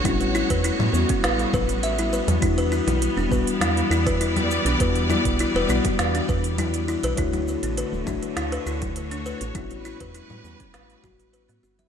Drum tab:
HH |oo-oo--ooo-ooo-o|oo-oo--ooo-ooo-o|oo-oo--ooo-ooo-o|oo-oo--ooo-ooo-o|
SH |xxxxxxxxxxxxxxxx|xxxxxxxxxxxxxxxx|xxxxxxxxxxxxxxxx|xxxxxxxxxxxxxxxx|
SD |--------o-------|--------o-------|--------o-------|--------o-------|
CG |O----O----O----O|---O----O----O--|--O----O----O---|-O----O----O----|
BD |o--o---o--o-----|o-----o----o----|o--o---o--o-----|o-----o----o----|

HH |oo-oo--ooo-ooo-o|
SH |xxxxxxxxxxxxxxxx|
SD |--------o-------|
CG |O----O----O----O|
BD |o--o---o--o-----|